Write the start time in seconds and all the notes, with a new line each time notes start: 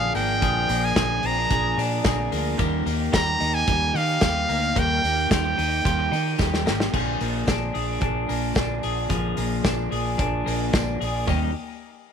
Already playing: A#2 D3 F3 A#3 D4 G#4 F5
0.14 G#1 F3 A#3 D4 G#4 G5, open hi-hat, tambourine
0.41 A#1 A#2 D3 F3 A#3 D4 G#4, kick, hi-hat pedal, ride, tambourine
0.67 A#1 F3 A#3 D4 G#4, open hi-hat, tambourine
0.85 G#5
0.94 A#1 A#2 D3 F3 A#3 D4 G#4, kick, snare, hi-hat pedal, ride, tambourine
1.21 A#1 F3 A#3 C4 D4 G#4, open hi-hat
1.26 A#5
1.38 D4
1.50 A#1 F3 A#3 D4 G#4, kick, hi-hat pedal, ride, tambourine
1.77 A#2 F3 A#3 D4 G#4, open hi-hat, tambourine
2.03 A#1 A#2 D3 F3 A#3 D4 G#4, kick, snare, hi-hat pedal, ride, tambourine
2.31 D2 F3 A#3 D4 G#4, open hi-hat, tambourine
2.58 D#2 D#3 G3 A#3 D#4 G4, kick, hi-hat pedal, ride, tambourine
2.85 D#2 A#3 D#4 G4, open hi-hat, tambourine
3.12 D#2 D#3 G3 A#3 D#4 G4 A#5, kick, snare, hi-hat pedal, ride, tambourine
3.39 D#2 A#3 D#4 G4, open hi-hat, tambourine
3.54 G#5
3.67 D#2 G3 A#3 D#4 G4, kick, hi-hat pedal, ride
3.94 D#3 A#3 D#4 G4 F5, open hi-hat, tambourine
4.21 D#2 D#3 G3 A#3 D#4 G4, kick, snare, hi-hat pedal, ride, tambourine
4.49 D2 A#3 D#4 G4, open hi-hat, tambourine
4.75 D#2 D#3 G3 A#3 D#4 G4 G5, kick, hi-hat pedal, ride, tambourine
5.03 D#2 A#3 D#4 G4, open hi-hat, tambourine
5.30 D#2 D#3 G3 A#3 D#4 F4 G4 G5, kick, snare, hi-hat pedal, ride, tambourine
5.44 G4
5.58 D#2 A#3 D#4 G4, open hi-hat, tambourine
5.84 D#2 G3 A#3 D#4 F4 G4, kick, hi-hat pedal, ride, tambourine
5.99 G4
6.11 D#3 A#3 D#4 G4, open hi-hat, tambourine
6.38 D#2 D#3 G3 A#3 D#4 G4, kick, snare, tambourine
6.54 snare
6.66 G#1 A#3 D#4 G4, snare, tambourine
6.80 snare
6.92 A#1 A#2 D3 F3 A#3 D4 G#4, kick, crash, tambourine
7.20 A#1 F3 A#3 D4 G#4, open hi-hat, tambourine
7.46 A#1 A#2 D3 F3 A#3 D4 G#4, kick, snare, closed hi-hat, tambourine
7.73 A#1 F3 A#3 D4 G#4, open hi-hat
8.00 A#1 F3 A#3 D4 G#4, kick, closed hi-hat, tambourine
8.27 A#1 F3 A#3 D4 G#4, open hi-hat, tambourine
8.54 A#1 A#2 D3 F3 A#3 D4 G#4, kick, snare, closed hi-hat, tambourine
8.82 A#1 F3 A#3 D4 G#4, open hi-hat, tambourine
9.09 A#1 A#2 D3 F3 A#3 D4 G#4, kick, closed hi-hat, tambourine
9.36 A#1 F3 A#3 D4 G#4, open hi-hat, tambourine
9.63 A#1 A#2 D3 F3 A#3 D4 G#4, kick, snare, closed hi-hat, tambourine
9.90 A#1 F3 A#3 D4 G#4, open hi-hat
10.17 A#1 F3 A#3 D4 G#4, kick, closed hi-hat, tambourine
10.45 A#1 F3 A#3 D4 G#4, open hi-hat, tambourine
10.71 A#1 A#2 D3 F3 A#3 D4 G#4, kick, snare, closed hi-hat, tambourine
10.98 A#1 F3 A#3 D4 G#4, open hi-hat, tambourine
11.26 D#2 D#3 G3 A#3 D#4 G4, kick, floor tom, tambourine